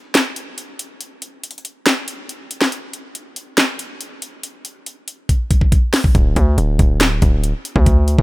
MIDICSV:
0, 0, Header, 1, 3, 480
1, 0, Start_track
1, 0, Tempo, 428571
1, 1128, Time_signature, 4, 2, 24, 8
1, 9211, End_track
2, 0, Start_track
2, 0, Title_t, "808-style bass"
2, 0, Program_c, 0, 38
2, 6888, Note_on_c, 0, 26, 106
2, 7118, Note_off_c, 0, 26, 0
2, 7128, Note_on_c, 0, 38, 104
2, 7358, Note_off_c, 0, 38, 0
2, 7368, Note_on_c, 0, 26, 109
2, 7598, Note_off_c, 0, 26, 0
2, 7608, Note_on_c, 0, 26, 100
2, 8068, Note_off_c, 0, 26, 0
2, 8089, Note_on_c, 0, 26, 106
2, 8434, Note_off_c, 0, 26, 0
2, 8688, Note_on_c, 0, 38, 96
2, 9149, Note_off_c, 0, 38, 0
2, 9168, Note_on_c, 0, 31, 102
2, 9211, Note_off_c, 0, 31, 0
2, 9211, End_track
3, 0, Start_track
3, 0, Title_t, "Drums"
3, 167, Note_on_c, 9, 38, 124
3, 167, Note_on_c, 9, 42, 83
3, 175, Note_on_c, 9, 39, 99
3, 279, Note_off_c, 9, 38, 0
3, 279, Note_off_c, 9, 42, 0
3, 287, Note_off_c, 9, 39, 0
3, 407, Note_on_c, 9, 42, 72
3, 519, Note_off_c, 9, 42, 0
3, 647, Note_on_c, 9, 42, 75
3, 759, Note_off_c, 9, 42, 0
3, 888, Note_on_c, 9, 42, 86
3, 1000, Note_off_c, 9, 42, 0
3, 1126, Note_on_c, 9, 42, 72
3, 1238, Note_off_c, 9, 42, 0
3, 1366, Note_on_c, 9, 42, 71
3, 1478, Note_off_c, 9, 42, 0
3, 1608, Note_on_c, 9, 42, 68
3, 1688, Note_off_c, 9, 42, 0
3, 1688, Note_on_c, 9, 42, 52
3, 1769, Note_off_c, 9, 42, 0
3, 1769, Note_on_c, 9, 42, 41
3, 1847, Note_off_c, 9, 42, 0
3, 1847, Note_on_c, 9, 42, 66
3, 1959, Note_off_c, 9, 42, 0
3, 2088, Note_on_c, 9, 38, 126
3, 2088, Note_on_c, 9, 42, 82
3, 2096, Note_on_c, 9, 39, 100
3, 2200, Note_off_c, 9, 38, 0
3, 2200, Note_off_c, 9, 42, 0
3, 2208, Note_off_c, 9, 39, 0
3, 2327, Note_on_c, 9, 42, 79
3, 2439, Note_off_c, 9, 42, 0
3, 2568, Note_on_c, 9, 42, 71
3, 2680, Note_off_c, 9, 42, 0
3, 2808, Note_on_c, 9, 42, 77
3, 2920, Note_off_c, 9, 42, 0
3, 2928, Note_on_c, 9, 38, 97
3, 2936, Note_on_c, 9, 39, 74
3, 3040, Note_off_c, 9, 38, 0
3, 3048, Note_off_c, 9, 39, 0
3, 3048, Note_on_c, 9, 42, 73
3, 3160, Note_off_c, 9, 42, 0
3, 3287, Note_on_c, 9, 42, 69
3, 3399, Note_off_c, 9, 42, 0
3, 3528, Note_on_c, 9, 42, 69
3, 3640, Note_off_c, 9, 42, 0
3, 3766, Note_on_c, 9, 42, 69
3, 3878, Note_off_c, 9, 42, 0
3, 4007, Note_on_c, 9, 38, 124
3, 4007, Note_on_c, 9, 42, 84
3, 4015, Note_on_c, 9, 39, 102
3, 4119, Note_off_c, 9, 38, 0
3, 4119, Note_off_c, 9, 42, 0
3, 4127, Note_off_c, 9, 39, 0
3, 4246, Note_on_c, 9, 42, 71
3, 4358, Note_off_c, 9, 42, 0
3, 4487, Note_on_c, 9, 42, 74
3, 4599, Note_off_c, 9, 42, 0
3, 4727, Note_on_c, 9, 42, 82
3, 4839, Note_off_c, 9, 42, 0
3, 4966, Note_on_c, 9, 42, 75
3, 5078, Note_off_c, 9, 42, 0
3, 5206, Note_on_c, 9, 42, 67
3, 5318, Note_off_c, 9, 42, 0
3, 5448, Note_on_c, 9, 42, 65
3, 5560, Note_off_c, 9, 42, 0
3, 5686, Note_on_c, 9, 42, 66
3, 5798, Note_off_c, 9, 42, 0
3, 5927, Note_on_c, 9, 36, 58
3, 5928, Note_on_c, 9, 42, 83
3, 6039, Note_off_c, 9, 36, 0
3, 6040, Note_off_c, 9, 42, 0
3, 6167, Note_on_c, 9, 36, 75
3, 6167, Note_on_c, 9, 42, 77
3, 6279, Note_off_c, 9, 36, 0
3, 6279, Note_off_c, 9, 42, 0
3, 6287, Note_on_c, 9, 36, 70
3, 6399, Note_off_c, 9, 36, 0
3, 6407, Note_on_c, 9, 36, 87
3, 6408, Note_on_c, 9, 42, 73
3, 6519, Note_off_c, 9, 36, 0
3, 6520, Note_off_c, 9, 42, 0
3, 6647, Note_on_c, 9, 38, 102
3, 6648, Note_on_c, 9, 46, 82
3, 6759, Note_off_c, 9, 38, 0
3, 6760, Note_off_c, 9, 46, 0
3, 6767, Note_on_c, 9, 36, 94
3, 6879, Note_off_c, 9, 36, 0
3, 6887, Note_on_c, 9, 42, 73
3, 6888, Note_on_c, 9, 36, 115
3, 6999, Note_off_c, 9, 42, 0
3, 7000, Note_off_c, 9, 36, 0
3, 7127, Note_on_c, 9, 42, 71
3, 7128, Note_on_c, 9, 36, 89
3, 7239, Note_off_c, 9, 42, 0
3, 7240, Note_off_c, 9, 36, 0
3, 7368, Note_on_c, 9, 42, 66
3, 7480, Note_off_c, 9, 42, 0
3, 7606, Note_on_c, 9, 42, 67
3, 7608, Note_on_c, 9, 36, 90
3, 7718, Note_off_c, 9, 42, 0
3, 7720, Note_off_c, 9, 36, 0
3, 7848, Note_on_c, 9, 38, 124
3, 7848, Note_on_c, 9, 42, 87
3, 7856, Note_on_c, 9, 39, 101
3, 7960, Note_off_c, 9, 38, 0
3, 7960, Note_off_c, 9, 42, 0
3, 7968, Note_off_c, 9, 39, 0
3, 8087, Note_on_c, 9, 42, 74
3, 8089, Note_on_c, 9, 36, 92
3, 8199, Note_off_c, 9, 42, 0
3, 8201, Note_off_c, 9, 36, 0
3, 8328, Note_on_c, 9, 42, 77
3, 8440, Note_off_c, 9, 42, 0
3, 8569, Note_on_c, 9, 42, 83
3, 8681, Note_off_c, 9, 42, 0
3, 8688, Note_on_c, 9, 36, 95
3, 8800, Note_off_c, 9, 36, 0
3, 8808, Note_on_c, 9, 36, 116
3, 8808, Note_on_c, 9, 42, 74
3, 8920, Note_off_c, 9, 36, 0
3, 8920, Note_off_c, 9, 42, 0
3, 9047, Note_on_c, 9, 42, 69
3, 9159, Note_off_c, 9, 42, 0
3, 9168, Note_on_c, 9, 36, 98
3, 9211, Note_off_c, 9, 36, 0
3, 9211, End_track
0, 0, End_of_file